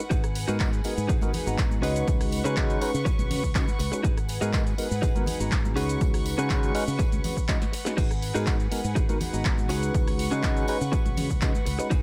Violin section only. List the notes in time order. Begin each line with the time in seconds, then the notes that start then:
Already playing: F#5
0.11 G#4 B4
1.83 B4 C#6
4.04 G#4 B4 F#5
5.77 B4 F#5 C#6
7.98 G#4 B4
9.70 B4 C#6
11.92 G#4 B4